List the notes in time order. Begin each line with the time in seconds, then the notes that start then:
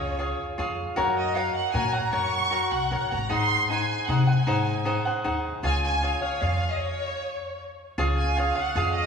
Already playing: C#2 F4 G#4 C#5 F5
0.19 F4 G#4 C#5 F5
0.58 F2 F4 G#4 C#5 F5
0.96 F#2 F#4 A#4 C#5 F#5
1.17 D#5
1.35 F#4 A#4 C#5 F5 F#5
1.55 F#5
1.73 A#2 F#4 A#4 C#5 F#5 G#5
1.93 A#4 C#5 F#5 A#5
2.12 F#2 F#4 A#4 C#5 F#5 C#6
2.51 F#4 A#4 C#5 F#5
2.71 C2 F#5
2.91 A#1 F#4 A#4 C#5 F#5
3.10 G#1 A#4 C#5 F#5 A#5
3.29 G#2 D#4 G#4 C5 F#5 C6
3.70 D#4 G#4 C5 F#5 G#5
4.08 C3 D#4 G#4 C5 F#5
4.27 G#4 C5 F#5 G#5
4.47 G#2 D#4 G#4 C5 F#5
4.85 D#4 G#4 C5 F#5
5.05 G#4 C5 F#5
5.24 D#2 D#4 G#4 C5 F#5
5.63 C#2 F4 G#4 C#5 F5 G#5
5.84 G#5
6.03 F4 G#4 C#5 F5
6.22 G#4 C#5 F5
6.41 F2 F4 G#4 C#5 F5
6.70 D#5
6.79 C#5
7.98 C#2 F4 G#4 C#5 F5
8.17 G#5
8.37 F4 G#4 C#5 F5
8.56 G#4 C#5 F5
8.61 F#5
8.75 F2 F4 G#4 C#5 F5
8.94 D#5